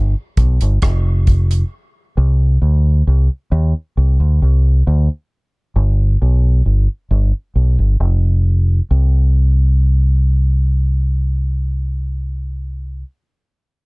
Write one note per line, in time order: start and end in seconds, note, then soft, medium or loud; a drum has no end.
0.00 0.14 G1 medium
0.37 0.58 B1 medium
0.37 kick loud
0.37 closed hi-hat medium
0.61 0.81 G1 medium
0.61 closed hi-hat soft
0.82 1.62 F1 medium
0.82 kick loud
0.82 cross-stick medium
0.82 closed hi-hat medium
1.27 kick medium
1.27 closed hi-hat medium
1.51 closed hi-hat medium
2.17 2.57 C2 medium
2.62 3.02 D2 medium
3.07 3.28 C2 medium
3.52 3.72 D#2 loud
3.97 4.18 C2 medium
4.20 4.39 D2 medium
4.42 4.82 C2 medium
4.87 5.07 D2 medium
5.76 6.16 G1 medium
6.22 6.61 B1 medium
6.66 6.86 G1 medium
7.11 7.31 G1 medium
7.56 7.76 B1 medium
7.79 7.98 G1 medium
8.00 8.80 F1 medium
8.91 13.03 C2 medium